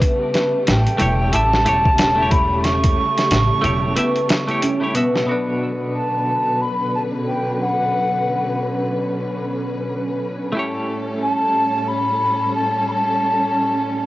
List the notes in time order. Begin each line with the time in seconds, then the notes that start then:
0.01 C#3 G3 A3 B3, kick, closed hi-hat
0.34 B4, snare, closed hi-hat
0.66 A1 A3 G5, snare, closed hi-hat
0.86 closed hi-hat
0.98 E1 A3 E4 G4 C#5, closed hi-hat
1.32 A1 A3 E4 G4 E5 A5, closed hi-hat
1.53 snare
1.65 E1 A3 E4 G4 C#5, closed hi-hat
1.85 kick
1.98 C#4, snare, closed hi-hat
2.16 A3 E4
2.20 G4 C#5
2.31 B5, kick, closed hi-hat
2.64 C#6, snare, closed hi-hat
2.84 kick, closed hi-hat
3.18 snare, closed hi-hat
3.31 A1, snare, closed hi-hat
3.62 E1 F#3 A3 E4 G4 C#5, closed hi-hat
3.96 A3 B3 E4 G4 E5, closed hi-hat
4.16 closed hi-hat
4.29 snare, closed hi-hat
4.48 A3 E4 G4 C#5, closed hi-hat
4.62 C#4, closed hi-hat
4.80 A3 E4 G4 C#5
4.94 B2 B3 F#4 E5, closed hi-hat
5.15 snare
5.24 B2 B3
5.29 B2 D3 F#3 C#4 D4 F#4 B4
5.96 A5
6.62 B5
6.95 A5
7.27 G5
7.54 G5
7.61 F#5
10.52 A2 G3 A3 E4 A4
10.56 C#4 G4 C#5
11.22 A5
11.88 B5
12.55 A5
12.88 A5 B5